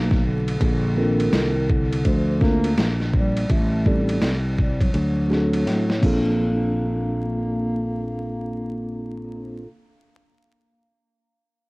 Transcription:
Already playing: fretless electric bass B1, bass clarinet A#3
0.11 kick, snare
0.26 bass clarinet D3
0.48 ride
0.61 fretless electric bass A#1, kick, ride
0.96 bass clarinet D#3, tine electric piano A#3 C4 D4 F4 A4
1.20 ride
1.33 fretless electric bass C2, snare, hi-hat pedal, ride
1.70 bass clarinet D3, kick
1.93 ride
2.05 fretless electric bass D2, bass clarinet F3, kick, ride
2.40 tine electric piano A#3 C4 D4 F4 A#4, bass clarinet A#3, kick, snare
2.64 ride
2.77 fretless electric bass A#1, snare, hi-hat pedal, ride
3.00 snare
3.13 bass clarinet G3, kick
3.37 ride
3.49 fretless electric bass A1, bass clarinet A3, kick, ride
3.85 bass clarinet G3, tine electric piano A3 C4 D#4 G4 A4, kick
4.09 ride
4.22 fretless electric bass C2, snare, hi-hat pedal, ride
4.58 bass clarinet G3, kick
4.81 bass clarinet F#3, kick, ride
4.94 fretless electric bass D2, ride
5.29 tine electric piano A3 C4 D4 F#4 G#4, snare
5.37 tine electric piano A4
5.53 ride
5.66 fretless electric bass A2, snare, hi-hat pedal, ride
5.90 snare
5.99 tine electric piano A#3 C4 D4
6.03 fretless electric bass A#1, bass clarinet A#3, tine electric piano F4 A4, kick, crash

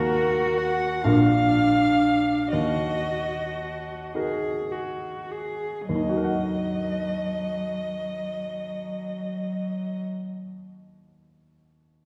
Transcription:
Already playing: grand piano D#2 A#3 F#4 A#4, cello F#4, violin A#4
0.58 violin F#5
1.04 grand piano A#1 D4 F4 A#4, cello D4, violin F5
2.52 grand piano D#2, cello F#4, violin D#5
4.15 grand piano D#4 F#4 A#4, cello G#4
4.72 cello F#4
5.31 cello G#4
5.89 grand piano D#2, cello F#3, violin D#5
5.95 grand piano D#3
6.03 grand piano D#4
6.09 grand piano F#4
6.17 grand piano A#4
6.24 grand piano F#5

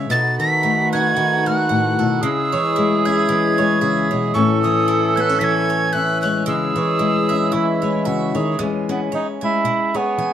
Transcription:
Already playing: mandolin E4 C#5 E5
0.09 steel-string acoustic guitar B2, harmonium A3 D#4 B4, mandolin B3, tenor saxophone F#4, tin whistle A6
0.39 steel-string acoustic guitar D#3, mandolin A4, tin whistle B6
0.63 steel-string acoustic guitar A3, mandolin D#4
0.93 steel-string acoustic guitar D#4, mandolin F#5, tin whistle G#6
1.16 steel-string acoustic guitar D#3, mandolin D#4
1.46 steel-string acoustic guitar A3, mandolin A4, tin whistle F#6
1.69 steel-string acoustic guitar A2, mandolin F#5
1.99 steel-string acoustic guitar B2, mandolin A4
2.22 steel-string acoustic guitar C#3, harmonium G#3 E4 C#5, mandolin G#3, tenor saxophone G#4, tin whistle E6
2.52 steel-string acoustic guitar E3, mandolin C#5
2.76 steel-string acoustic guitar G#3, mandolin E4
3.05 steel-string acoustic guitar C#4, mandolin E5, tin whistle G#6
3.29 steel-string acoustic guitar E3, mandolin E4
3.58 steel-string acoustic guitar G#3, mandolin C#5
3.81 steel-string acoustic guitar C#3, tenor saxophone G#4, mandolin E5
4.11 steel-string acoustic guitar B2, mandolin C#5
4.34 steel-string acoustic guitar A2 E3 C#4, tenor saxophone A4, harmonium C#5 G#5, tin whistle C#6
4.62 steel-string acoustic guitar E3, mandolin C#5, tin whistle D#6
4.88 mandolin E4
5.16 steel-string acoustic guitar B3, mandolin E5, tin whistle G#6
5.20 tin whistle F#6
5.29 steel-string acoustic guitar C#4
5.39 steel-string acoustic guitar E3, mandolin E4, tin whistle B6
5.44 tin whistle G#6
5.70 mandolin C#5
5.93 steel-string acoustic guitar C#4, mandolin E5, tin whistle F#6
6.22 steel-string acoustic guitar G#3, mandolin C#5, tin whistle F#6
6.46 steel-string acoustic guitar C#3, mandolin G#3, harmonium G#3 E4, tenor saxophone G#4, tin whistle E6
6.76 steel-string acoustic guitar E3, mandolin C#5
6.99 steel-string acoustic guitar G#3, mandolin E4
7.29 steel-string acoustic guitar C#4, mandolin E5
7.52 steel-string acoustic guitar E3, mandolin E4, tenor saxophone E4
7.82 steel-string acoustic guitar G#3, mandolin C#5
8.05 steel-string acoustic guitar C#3, tenor saxophone F#4, mandolin E5
8.35 steel-string acoustic guitar D#3, tenor saxophone G#4, mandolin C#5
8.59 steel-string acoustic guitar E2 E3 G#3 C#4 G#4, mandolin B3
8.89 tenor saxophone B3, steel-string acoustic guitar C#4, mandolin E4
9.12 steel-string acoustic guitar E3, tenor saxophone D#4, mandolin C#5
9.41 steel-string acoustic guitar G#3, tenor saxophone E4, mandolin G#5
9.64 steel-string acoustic guitar B2, mandolin E4
9.94 tenor saxophone B3, steel-string acoustic guitar G#4, mandolin C#5
10.18 steel-string acoustic guitar E3, mandolin G#5

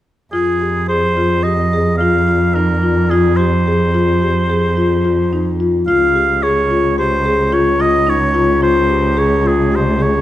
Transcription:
0.32 cello F2, marimba F4, oboe G#4
0.61 marimba G4
0.88 marimba G#4, oboe C5
1.17 marimba F4
1.43 marimba G4, oboe D#5
1.73 marimba G#4
1.98 marimba F4, oboe F5
2.28 marimba F4
2.55 marimba D#4, oboe A#4
2.83 marimba F4
3.10 marimba F4, oboe G#4
3.37 marimba G4, oboe C5
3.67 marimba G#4
3.94 marimba F4
4.22 marimba G4
4.50 marimba G#4
4.77 marimba F4
5.05 marimba F4
5.33 marimba D#4
5.60 marimba F4
5.87 cello C#2, marimba F4, oboe F5
6.15 marimba G4
6.43 marimba G#4, oboe C#5
6.71 marimba F4
6.98 marimba G4, oboe C5
7.25 marimba G#4
7.53 marimba F4, oboe C#5
7.80 marimba F4, oboe D#5
8.07 marimba D#4, oboe C#5
8.34 marimba F4
8.62 marimba F4, oboe C5
8.90 marimba G4
9.17 marimba G#4, oboe C#5
9.44 marimba F4, oboe G#4
9.72 marimba G4, oboe C5
9.99 marimba G#4, oboe C#5

